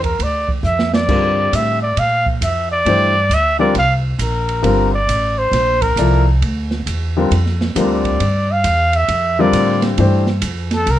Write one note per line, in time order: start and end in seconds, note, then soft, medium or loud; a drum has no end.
0.00 0.17 E2 medium
0.00 0.25 A#4 medium
0.00 kick soft
0.00 ride soft
0.19 0.62 D2 medium
0.19 0.50 D5 medium
0.19 ride medium
0.48 kick medium
0.63 1.07 F2 medium
0.63 0.92 E5 medium
0.63 hi-hat pedal medium
0.79 snare medium
0.94 1.57 D5 medium
0.94 snare medium
1.08 1.51 G2 medium
1.08 1.76 D3 medium
1.08 1.76 G3 medium
1.08 1.76 C4 soft
1.08 1.77 F4 soft
1.08 1.77 A#4 medium
1.08 kick medium
1.08 crash medium
1.53 1.96 A2 medium
1.53 1.82 E5 loud
1.53 hi-hat pedal medium
1.53 ride medium
1.82 2.01 D5 medium
1.97 2.40 A#2 medium
1.97 2.27 F5 loud
1.97 ride medium
2.26 kick medium
2.41 2.85 F2 medium
2.41 2.70 E5 medium
2.41 hi-hat pedal medium
2.41 ride medium
2.72 3.36 D5 loud
2.85 3.29 G2 medium
2.85 3.12 E3 medium
2.85 3.12 A3 medium
2.85 3.13 D4 medium
2.85 3.13 G4 medium
2.85 3.13 C5 medium
2.85 ride medium
3.29 3.73 D2 medium
3.29 hi-hat pedal medium
3.29 ride medium
3.34 3.59 E5 loud
3.59 3.73 D3 medium
3.59 3.74 G3 medium
3.59 3.74 C4 medium
3.59 3.74 F4 medium
3.59 3.74 A#4 medium
3.59 3.74 D5 medium
3.75 4.18 C2 medium
3.75 3.95 F5 loud
3.75 ride medium
4.19 4.62 A#1 medium
4.19 4.91 A#4 medium
4.19 hi-hat pedal medium
4.19 ride medium
4.49 ride soft
4.62 5.07 G1 medium
4.62 4.89 D3 medium
4.62 4.90 G3 medium
4.62 4.90 C4 medium
4.62 4.90 F4 medium
4.62 4.90 A#4 medium
4.62 ride medium
4.94 5.40 D5 medium
5.07 5.51 A1 medium
5.07 hi-hat pedal medium
5.07 ride medium
5.38 5.83 C5 medium
5.52 5.95 A#1 medium
5.52 snare soft
5.52 ride medium
5.82 6.26 A#4 loud
5.82 kick medium
5.82 ride medium
5.96 6.40 C2 medium
5.96 6.24 F3 medium
5.96 6.24 A#3 medium
5.96 6.24 E4 medium
5.96 6.24 A4 medium
5.96 6.24 D5 medium
5.96 hi-hat pedal medium
5.96 ride medium
6.42 6.85 D2 medium
6.42 ride medium
6.71 snare soft
6.86 7.29 E2 medium
6.86 hi-hat pedal soft
6.86 ride medium
7.17 7.30 D3 medium
7.17 7.30 G3 medium
7.17 7.30 C4 medium
7.17 7.31 F4 medium
7.17 7.31 A#4 medium
7.31 7.74 F2 medium
7.31 ride medium
7.46 snare soft
7.61 snare soft
7.75 8.19 D2 medium
7.75 8.20 D3 medium
7.75 8.20 G3 medium
7.75 8.20 C4 medium
7.75 8.21 F4 medium
7.75 8.21 A#4 medium
7.75 hi-hat pedal medium
7.75 ride medium
7.80 8.53 D5 medium
8.04 kick soft
8.04 ride soft
8.20 8.63 G2 medium
8.20 ride medium
8.52 8.97 F5 loud
8.64 9.07 E2 medium
8.64 hi-hat pedal medium
8.64 ride medium
8.93 9.42 E5 loud
8.93 ride soft
9.08 9.52 F2 medium
9.08 ride medium
9.39 9.95 D3 medium
9.39 9.95 G3 medium
9.39 9.95 C4 medium
9.39 9.96 F4 medium
9.39 9.96 A#4 medium
9.39 9.84 D5 loud
9.52 9.96 A2 medium
9.52 hi-hat pedal medium
9.52 ride medium
9.82 snare medium
9.82 ride soft
9.98 10.41 G2 medium
9.98 10.24 E3 medium
9.98 10.24 A3 medium
9.98 10.25 D4 medium
9.98 10.25 G4 medium
9.98 10.25 C5 medium
9.98 ride medium
10.26 snare soft
10.42 10.85 F2 medium
10.42 hi-hat pedal soft
10.42 ride medium
10.71 10.92 A4 medium
10.71 snare soft
10.71 ride soft
10.86 10.99 C2 medium
10.86 ride medium
10.91 10.99 A#4 medium